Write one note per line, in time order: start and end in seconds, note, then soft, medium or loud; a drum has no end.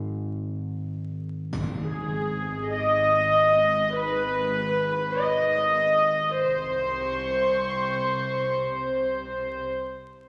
0.00 1.52 G#1 medium
1.53 2.10 G#1 soft
1.53 6.39 G#1 medium
1.53 6.19 G#2 soft
1.53 impact soft
1.53 triangle soft
1.84 2.71 G#4 soft
2.76 3.98 D#5 medium
2.76 6.46 D6 soft
3.97 5.18 B4 medium
4.92 6.46 B4 soft
4.92 6.46 B5 soft
5.20 6.43 D#5 medium
6.41 9.63 C2 soft
6.41 9.63 C3 soft
6.41 9.63 C5 soft
6.41 8.53 C6 soft
7.04 8.53 C#6 soft